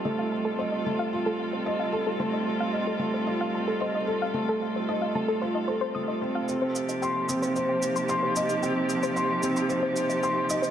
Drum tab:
SH |----------------|----------------|----------------|x-xxx-xxx-xxx-xx|

SH |x-xxx-xxx-xxx-xx|